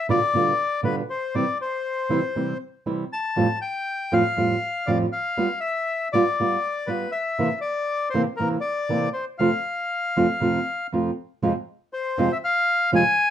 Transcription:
0.09 nylon-string guitar B2 D3 G3 B3 F4, bandoneon D5
0.34 nylon-string guitar B2 D3 G3 B3 F4
0.83 nylon-string guitar B2 D3 G3 B3 F4, bandoneon B4
1.10 bandoneon C5
1.35 nylon-string guitar C3 E3 G3 C4 E4, bandoneon D5
1.61 bandoneon C5
2.09 nylon-string guitar C3 E3 G3 C4 E4
2.36 nylon-string guitar C3 E3 G3 C4 E4
2.86 nylon-string guitar C3 E3 G3 C4 E4
3.13 bandoneon A5
3.36 nylon-string guitar F2 A2 F3 G3 C4 F4
3.61 bandoneon G5
4.12 nylon-string guitar F2 A2 F3 G3 C4 F4, bandoneon F5
4.37 nylon-string guitar F2 A2 F3 G3 C4 F4
4.87 nylon-string guitar F2 A2 F3 G3 C4 F4, bandoneon D5
5.13 bandoneon F5
5.37 nylon-string guitar G3 B3 F4
5.60 bandoneon E5
6.12 nylon-string guitar G3 B3 F4, bandoneon D5
6.40 nylon-string guitar G3 B3 F4
6.87 nylon-string guitar G3 B3 F4, bandoneon B4
7.12 bandoneon E5
7.39 nylon-string guitar C3 E3 A#3 C4 E4
7.61 bandoneon D5
8.10 bandoneon C5
8.14 nylon-string guitar C3 E3 A#3 C4 E4
8.37 nylon-string guitar C3 E3 A#3 C4, bandoneon A#4
8.41 nylon-string guitar E4
8.61 bandoneon D5
8.89 nylon-string guitar C3 E3 A#3 C4 E4
9.13 bandoneon C5
9.38 nylon-string guitar F2 C3 F3 A3 C4 F4, bandoneon F5
10.16 nylon-string guitar F2 C3 F3 A3 C4 F4
10.40 nylon-string guitar F2 C3 F3 A3 C4 F4
10.93 nylon-string guitar F2 C3 F3 A3 C4 F4
11.43 nylon-string guitar F2 C3 F3 G#3 C4 F4
11.93 bandoneon C5
12.18 nylon-string guitar F2 C3 F3 G#3 C4 F4
12.32 bandoneon E5
12.44 bandoneon F5
12.92 nylon-string guitar F2 C3 F3 G#3 C4 F4, bandoneon G#5

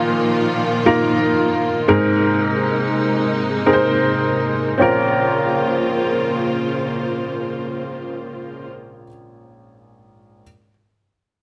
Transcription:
Already playing: upright piano A#2 A#3 D#4 F4 A#4, string section A#2 D#3 F3 A#3 F4
0.86 upright piano A#3 D#4 F4 A#4
1.88 upright piano G#2 C4 D#4 G#4 A#4, string section C3 G#3 D#4
3.66 upright piano C4 D#4 G#4 A#4
3.73 upright piano C5
4.78 upright piano A#1 C4 C#4 F4, string section C#3 A#3 F4 C5
4.82 upright piano A#4

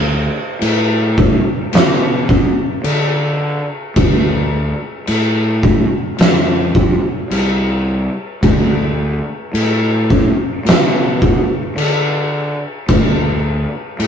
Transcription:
Already playing: fingered electric bass D2
0.61 fingered electric bass A2, crash
1.18 kick
1.73 fingered electric bass B2, snare, crash
2.29 kick
2.84 fingered electric bass D3, crash
3.96 fingered electric bass D2, kick, crash
5.07 fingered electric bass A2, crash
5.63 kick
6.18 fingered electric bass F2, snare, crash
6.75 kick
7.31 fingered electric bass C2, crash
8.43 fingered electric bass D2, kick, crash
9.54 fingered electric bass A2, crash
10.10 kick
10.65 fingered electric bass B2, snare, crash
11.22 kick
11.76 fingered electric bass D3, crash
12.88 fingered electric bass D2, kick, crash
13.99 fingered electric bass A2, crash

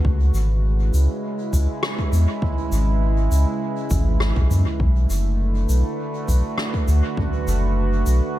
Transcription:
Already playing: ambient pad F#4 B4
0.05 sub bass C#2, ambient pad C#3, kick
0.21 ambient pad G#3
0.34 sub bass G#1, shaker
0.57 ambient pad E4
0.94 sub bass C#2, shaker
1.53 sub bass C#2, kick, shaker
1.83 cross-stick
1.99 kick
2.12 sub bass E2, shaker
2.42 kick, mid tom
2.72 sub bass G#1, shaker
3.31 sub bass C#2, shaker
3.90 sub bass G#1, kick, mid tom, shaker
4.20 cross-stick
4.36 sub bass B1, kick
4.51 sub bass F#2, mid tom, shaker
4.80 sub bass B1, ambient pad D3, kick
4.88 ambient pad A3
5.10 sub bass F#1, shaker
5.39 ambient pad B4
5.69 sub bass B1, shaker
5.78 ambient pad F#4
6.28 sub bass B1, kick, shaker
6.58 cross-stick
6.74 kick
6.88 sub bass D2, shaker
7.17 kick, mid tom
7.47 sub bass F#1, shaker
8.06 sub bass B1, shaker

